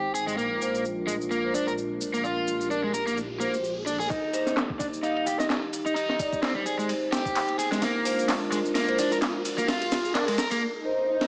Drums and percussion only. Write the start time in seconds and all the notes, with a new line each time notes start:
0.15 shaker
0.28 shaker
0.38 shaker
0.62 shaker
0.75 shaker
0.85 shaker
1.08 shaker
1.21 shaker
1.31 shaker
1.55 shaker
1.68 shaker
1.78 shaker
2.01 shaker
2.14 shaker
2.24 shaker
2.48 shaker
2.61 shaker
2.71 shaker
2.94 shaker
3.07 shaker
3.17 shaker
3.41 shaker
3.54 shaker
3.64 shaker
3.87 shaker
4.00 shaker
4.10 kick, ride, shaker
4.33 open hi-hat, shaker
4.47 snare, shaker
4.57 snare, clap, ride, shaker
4.70 kick
4.80 kick, ride, shaker
4.93 shaker
5.03 ride, shaker
5.17 ride
5.27 ride, shaker
5.40 snare, shaker
5.50 snare, clap, ride, shaker
5.73 ride, shaker
5.86 shaker
5.96 ride, shaker
6.09 snare
6.19 kick, ride, shaker
6.33 kick, shaker
6.43 snare, clap, ride, shaker
6.66 ride, shaker
6.79 shaker
6.89 ride, shaker
7.12 snare, ride, shaker
7.25 kick, shaker
7.35 clap, ride, shaker
7.48 ride
7.59 ride, shaker
7.72 snare, shaker
7.82 snare, ride, shaker
8.05 open hi-hat, shaker
8.19 shaker
8.28 snare, clap, ride, shaker
8.52 ride, shaker
8.65 shaker
8.75 snare, ride, shaker
8.89 ride
8.99 ride, shaker
9.12 shaker
9.22 snare, clap, ride, shaker
9.45 ride, shaker
9.58 ride, shaker
9.68 snare, ride, shaker
9.82 ride
9.92 snare, ride, shaker
10.05 shaker
10.15 snare, clap, ride, shaker
10.28 ride
10.38 snare, shaker
10.51 ride, shaker
11.21 snare